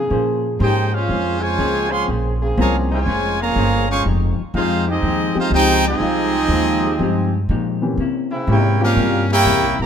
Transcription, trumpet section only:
0.62 0.92 D#4 medium
0.62 0.92 G#4 medium
0.62 0.92 C5 medium
0.62 0.92 G5 medium
0.94 1.43 C#4 medium
0.94 1.43 G#4 medium
0.94 1.41 C5 medium
0.94 1.43 F5 medium
1.41 1.91 F4 medium
1.41 1.92 C5 loud
1.41 1.90 C#5 loud
1.41 1.91 G#5 loud
1.91 2.07 G#4 medium
1.91 2.07 C#5 medium
1.91 2.07 F5 medium
1.91 2.07 C6 loud
2.61 2.75 G#4 medium
2.61 2.75 C#5 medium
2.61 2.75 F5 medium
2.61 2.75 A#5 medium
2.93 3.38 F4 medium
2.93 3.38 C5 medium
2.93 3.38 C#5 medium
2.93 3.38 G#5 medium
3.41 3.89 G#4 medium
3.41 3.90 C#5 medium
3.41 3.89 F5 loud
3.41 3.90 A#5 loud
3.90 4.04 G#4 medium
3.90 4.04 C5 medium
3.90 4.04 F5 medium
3.90 4.04 C#6 loud
4.55 4.86 D#4 medium
4.55 4.86 G#4 medium
4.55 4.86 C5 medium
4.55 4.86 F5 medium
4.90 5.38 C4 medium
4.90 5.38 G4 medium
4.90 5.38 G#4 medium
4.90 5.38 D#5 loud
5.39 5.52 D#4 medium
5.39 5.52 G#4 medium
5.39 5.52 C5 medium
5.39 5.52 F5 loud
5.54 5.84 D#4 loud
5.54 5.84 G#4 loud
5.54 5.84 C5 medium
5.54 5.84 G5 loud
5.88 7.46 C4 medium
5.88 7.46 G4 medium
5.88 7.45 G#4 medium
5.88 7.46 D#5 loud
8.50 8.79 E4 medium
8.50 8.80 A#4 medium
8.50 8.80 C#5 medium
8.50 8.80 G5 medium
8.83 9.28 C#4 medium
8.83 9.28 G4 medium
8.83 9.28 A#4 medium
8.83 9.28 F5 medium
9.32 9.77 E4 loud
9.32 9.77 A#4 loud
9.32 9.77 C#5 medium
9.32 9.77 G5 loud
9.81 9.86 G4 medium
9.81 9.86 C#5 medium
9.81 9.86 E5 medium
9.81 9.86 A#5 loud

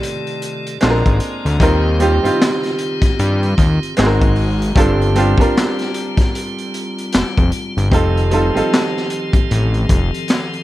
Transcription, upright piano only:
0.00 0.83 G3 medium
0.00 0.82 C4 medium
0.00 0.82 D4 medium
0.00 0.83 D#4 medium
0.00 0.83 F4 medium
0.00 0.83 A4 loud
0.81 1.56 G#3 medium
0.81 1.56 C4 medium
0.81 1.57 D4 medium
0.81 1.57 F4 medium
0.81 0.90 A4 medium
0.90 1.61 A#4 loud
1.60 1.97 G3 medium
1.60 1.98 C4 medium
1.60 1.98 D#4 medium
1.60 1.99 F4 medium
1.60 1.99 A#4 loud
1.99 2.22 G3 medium
1.99 2.22 C4 medium
1.99 2.22 D#4 medium
1.99 2.23 F4 medium
1.99 2.23 G4 loud
2.23 3.69 G3 medium
2.23 3.69 C4 medium
2.23 3.70 D#4 medium
2.23 3.70 F4 medium
2.23 3.71 G4 medium
3.97 4.72 G#3 medium
3.97 4.72 C4 medium
3.97 4.72 D#4 medium
3.97 4.73 F#4 medium
3.97 4.06 G#4 medium
4.06 4.77 A#4 loud
4.75 5.13 G3 medium
4.75 5.13 C4 medium
4.75 5.14 D4 medium
4.75 5.14 F4 medium
4.75 5.14 A4 loud
5.15 5.37 G3 medium
5.15 5.38 C4 medium
5.15 5.38 D4 medium
5.15 5.38 F4 medium
5.15 5.39 G4 medium
5.38 6.85 G3 medium
5.38 6.85 C4 medium
5.38 6.85 D4 medium
5.38 6.86 F4 medium
5.38 6.86 A#4 loud
7.91 8.29 G3 medium
7.91 8.29 C4 medium
7.91 8.30 D#4 medium
7.91 8.30 F4 medium
7.91 8.30 A4 loud
8.31 8.53 G3 medium
8.31 8.54 C4 medium
8.31 8.54 D#4 medium
8.31 8.54 F4 medium
8.31 8.55 A4 loud
8.54 10.00 G3 medium
8.54 10.01 C4 medium
8.54 10.01 D#4 medium
8.54 10.02 F4 medium
8.54 10.02 A4 loud

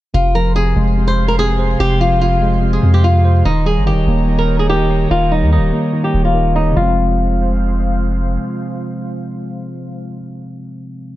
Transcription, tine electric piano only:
0.14 0.54 C3 medium
0.35 1.39 F3 medium
0.55 0.96 C3 medium
0.76 1.80 G#3 medium
0.97 1.37 C3 medium
1.38 1.79 C3 medium
1.59 2.63 C5 medium
1.80 2.20 C3 medium
2.01 3.04 F3 medium
2.22 2.61 C3 medium
2.42 3.45 G#3 medium
2.62 3.03 C3 medium
3.04 3.45 C3 medium
3.25 3.46 C5 medium
3.45 3.85 D#3 medium
3.66 4.69 G3 medium
3.86 4.27 D#3 medium
4.08 5.11 A#3 medium
4.28 4.68 D#3 medium
4.70 5.10 D#3 medium
4.90 5.94 D#4 medium
5.11 5.51 D#3 medium
5.31 6.35 G3 medium
5.53 5.92 D#3 medium
5.73 6.76 A#3 medium
5.93 6.33 D#3 medium
6.34 6.76 D#3 medium
6.55 6.76 D#4 medium
6.71 10.08 C3 medium
6.71 10.12 F3 medium
6.79 10.16 G#3 medium
6.79 10.20 C4 medium

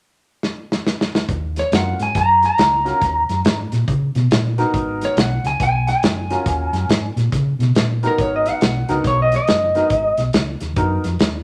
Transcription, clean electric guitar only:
1.59 1.73 C#5 medium
1.75 2.00 F#5 medium
2.03 2.16 G#5 medium
2.18 2.43 A#5 medium
2.46 3.69 A#5 loud
5.05 5.18 C#5 medium
5.20 5.45 F#5 medium
5.47 5.61 G#5 medium
5.63 5.88 G#5 medium
5.89 7.13 G#5 medium
8.07 8.20 A#4 medium
8.21 8.34 C#5 medium
8.36 8.50 D#5 medium
8.50 9.04 F#5 medium
9.07 9.20 C#5 medium
9.22 9.34 D#5 medium
9.36 10.18 D#5 medium

